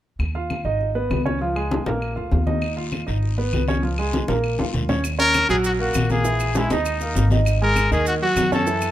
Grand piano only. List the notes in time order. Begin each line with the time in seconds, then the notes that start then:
0.35 F4 F5
0.65 D#4 D#5
0.95 B3 B4
1.25 C#4 C#5
1.41 F3 F4
1.56 G#3 G#4
1.86 A#3 A#4
2.16 F4 F5
2.46 D#4 D#5
2.77 F4 F5
3.07 D#4 D#5
3.38 B3 B4
3.68 C#4 C#5
3.83 F3 F4
3.99 G#3 G#4
4.28 A#3 A#4
4.59 F4 F5
4.89 C#4 C#5
5.18 C#4 C#5
5.49 F#3 F#4
5.79 A#3 A#4
6.10 A#3 A#4
6.24 E3 E4
6.56 G#3 G#4
6.71 D#4 D#5
7.02 A#3 A#4
7.32 D#4 D#5
7.62 G#3 G#4
7.92 D#3 D#4
8.22 F#3 F#4
8.52 C#4 C#5
8.67 E3 E4